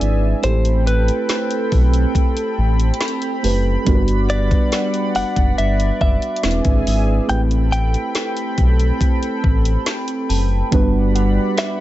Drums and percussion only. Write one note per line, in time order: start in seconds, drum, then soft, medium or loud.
0.01 closed hi-hat medium
0.43 closed hi-hat medium
0.65 closed hi-hat soft
0.87 closed hi-hat medium
1.08 closed hi-hat soft
1.29 snare loud
1.29 closed hi-hat medium
1.51 closed hi-hat soft
1.72 kick medium
1.72 open hi-hat soft
1.94 closed hi-hat medium
2.15 kick medium
2.15 closed hi-hat medium
2.37 closed hi-hat medium
2.80 closed hi-hat soft
2.94 closed hi-hat medium
3.01 snare loud
3.08 closed hi-hat medium
3.22 closed hi-hat medium
3.44 open hi-hat medium
3.87 kick loud
3.87 closed hi-hat medium
4.08 closed hi-hat soft
4.30 closed hi-hat medium
4.51 kick loud
4.51 closed hi-hat soft
4.72 snare loud
4.72 closed hi-hat medium
4.94 closed hi-hat soft
5.15 open hi-hat soft
5.36 kick medium
5.36 closed hi-hat medium
5.58 closed hi-hat medium
5.80 closed hi-hat medium
6.01 kick medium
6.22 closed hi-hat soft
6.36 closed hi-hat medium
6.44 snare loud
6.51 closed hi-hat medium
6.65 kick medium
6.65 closed hi-hat medium
6.87 open hi-hat medium
7.29 closed hi-hat medium
7.51 closed hi-hat soft
7.73 closed hi-hat medium
7.94 closed hi-hat soft
8.15 snare loud
8.15 closed hi-hat medium
8.37 closed hi-hat soft
8.58 kick medium
8.58 closed hi-hat medium
8.80 closed hi-hat medium
9.01 kick medium
9.01 closed hi-hat medium
9.23 closed hi-hat soft
9.44 kick medium
9.65 closed hi-hat medium
9.86 snare loud
9.86 closed hi-hat medium
10.08 closed hi-hat medium
10.30 open hi-hat medium
10.72 kick loud
10.72 closed hi-hat medium
11.16 closed hi-hat medium
11.58 snare loud
11.58 closed hi-hat medium